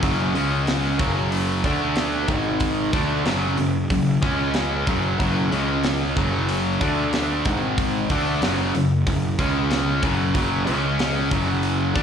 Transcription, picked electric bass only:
0.03 0.33 F#1 medium
0.34 0.95 C#2 medium
1.00 1.60 F#1 medium
1.65 2.25 D2 medium
2.29 2.89 G#1 medium
2.94 3.24 D2 medium
3.26 3.56 F#1 medium
3.59 3.89 F#1 medium
3.91 4.21 F#1 medium
4.22 4.83 C#2 medium
4.87 5.17 F#1 medium
5.20 5.50 F#1 medium
5.53 6.13 C#2 medium
6.17 6.77 F#1 medium
6.82 7.42 D2 medium
7.46 8.06 G#1 medium
8.10 8.40 D2 medium
8.42 8.72 F#1 medium
8.75 9.05 F#1 medium
9.07 9.36 F#1 medium
9.39 9.99 C#2 loud
10.03 10.33 F#1 medium
10.35 10.65 F#1 loud
10.69 11.28 C#2 medium
11.32 11.92 F#1 medium
11.96 12.03 D2 medium

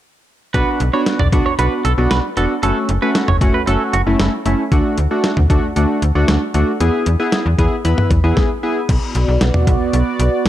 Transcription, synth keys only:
0.54 0.80 B3 medium
0.54 0.80 D4 medium
0.54 0.80 F#4 medium
0.93 1.19 B3 medium
0.93 1.19 D4 medium
0.93 1.19 F#4 medium
1.33 1.50 B3 medium
1.33 1.50 D4 medium
1.33 1.50 F#4 medium
1.59 1.84 B3 medium
1.59 1.84 D4 medium
1.59 1.84 F#4 medium
1.98 2.24 B3 medium
1.98 2.24 D4 medium
1.98 2.24 F#4 medium
2.37 2.54 B3 medium
2.37 2.54 D4 medium
2.37 2.54 F#4 medium
2.63 2.89 A3 medium
2.63 2.89 C#4 medium
2.63 2.89 F#4 medium
3.02 3.28 A3 medium
3.02 3.28 C#4 medium
3.02 3.28 F#4 medium
3.41 3.59 A3 medium
3.41 3.59 C#4 medium
3.41 3.59 F#4 medium
3.67 3.93 A3 medium
3.67 3.93 C#4 medium
3.67 3.93 F#4 medium
4.07 4.32 A3 medium
4.07 4.32 C#4 medium
4.07 4.32 E4 medium
4.46 4.63 A3 medium
4.46 4.63 C#4 medium
4.46 4.63 E4 medium
4.72 4.98 A3 medium
4.72 4.98 D4 medium
4.72 4.98 F#4 medium
5.11 5.37 A3 medium
5.11 5.37 D4 medium
5.11 5.37 F#4 medium
5.50 5.67 A3 medium
5.50 5.67 D4 medium
5.50 5.67 F#4 medium
5.76 6.02 A3 medium
5.76 6.02 D4 medium
5.76 6.02 F#4 medium
6.15 6.41 A3 medium
6.15 6.41 D4 medium
6.15 6.41 F#4 medium
6.54 6.72 A3 medium
6.54 6.72 D4 medium
6.54 6.72 F#4 medium
6.81 7.06 B3 medium
6.81 7.06 E4 medium
6.81 7.06 G#4 medium
7.20 7.45 B3 medium
7.20 7.45 E4 medium
7.20 7.45 G#4 medium
7.59 7.76 B3 medium
7.59 7.76 E4 medium
7.59 7.76 G#4 medium
7.85 8.11 B3 medium
7.85 8.11 E4 medium
7.85 8.11 B4 medium
8.24 8.50 B3 medium
8.24 8.50 E4 medium
8.24 8.50 G#4 medium
8.63 8.80 B3 medium
8.63 8.80 E4 medium
8.63 8.80 G#4 medium

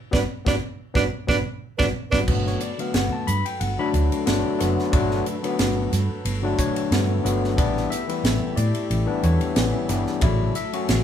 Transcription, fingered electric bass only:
0.13 0.24 G1 medium
0.46 0.58 G1 medium
0.95 1.08 G1 medium
1.28 1.42 G1 medium
1.80 1.91 G1 medium
2.13 2.24 G1 medium
2.28 2.55 G1 medium
2.94 3.09 G1 medium
3.28 3.42 G2 medium
3.61 3.75 G1 medium
3.94 4.08 D2 medium
4.27 4.42 G1 medium
4.61 4.75 F#1 medium
4.93 5.20 G1 medium
5.60 5.86 G1 medium
5.92 6.07 G2 medium
6.10 muted fingered electric bass stroke soft
6.25 6.52 G1 medium
6.91 7.18 G2 medium
7.25 7.58 G1 medium
7.58 7.85 A1 medium
8.24 8.38 A1 medium
8.42 muted fingered electric bass stroke soft
8.57 8.72 A2 medium
8.90 9.05 A1 medium
9.23 9.38 E2 medium
9.42 muted fingered electric bass stroke soft
9.56 9.71 A1 medium
9.89 10.04 G1 medium
10.22 10.49 A1 medium
10.89 11.04 A1 medium

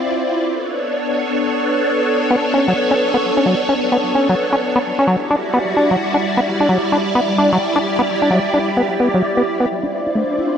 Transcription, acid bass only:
2.31 2.36 B3 loud
2.54 2.67 C#4 medium
2.68 2.73 F#3 medium
2.91 2.94 C#4 loud
3.14 3.17 B3 loud
3.37 3.45 C#4 medium
3.46 3.55 F#3 medium
3.69 3.74 C#4 loud
3.92 3.97 B3 loud
4.15 4.29 C#4 medium
4.29 4.35 F#3 medium
4.53 4.56 C#4 loud
4.76 4.79 B3 loud
4.99 5.07 C#4 medium
5.07 5.16 F#3 medium
5.30 5.36 D4 loud
5.54 5.59 B3 loud
5.77 5.90 D4 medium
5.91 5.97 F#3 medium
6.14 6.17 D4 loud
6.37 6.41 B3 loud
6.60 6.69 D4 medium
6.69 6.78 F#3 medium
6.92 6.98 D4 loud
7.15 7.21 B3 loud
7.38 7.52 D4 medium
7.53 7.58 F#3 medium
7.76 7.79 D4 loud
7.99 8.02 B3 loud
8.22 8.30 D4 medium
8.31 8.40 F#3 medium
8.54 8.59 D4 loud
8.77 8.82 B3 loud
9.00 9.09 B3 medium
9.14 9.22 F#3 medium
9.37 9.43 B3 medium
9.60 9.66 B3 loud
9.83 9.87 D4 loud
10.06 10.15 E4 medium
10.15 10.24 A3 medium
10.38 10.44 E4 loud

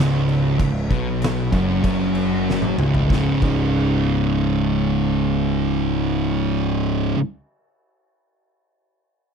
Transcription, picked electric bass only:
0.00 0.56 C#1 loud
0.59 0.88 C#1 medium
0.90 1.49 B1 medium
1.53 1.82 F#1 loud
1.84 2.74 F#1 loud
2.79 3.08 C#1 medium
3.10 3.28 C#1 medium
3.42 7.12 C#1 medium

